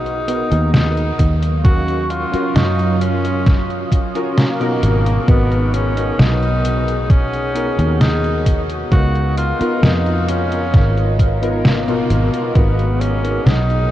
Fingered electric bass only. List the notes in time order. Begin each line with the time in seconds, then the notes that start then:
Already playing: B1
0.52 D#2
1.19 D#2
2.34 muted fingered electric bass stroke
2.56 F#2
4.83 G#1
5.28 G#1
6.19 B1
7.79 D#2
8.92 C#2
9.61 muted fingered electric bass stroke
9.83 F2
10.74 G#1
12.10 G#1
12.55 G#1
13.46 B1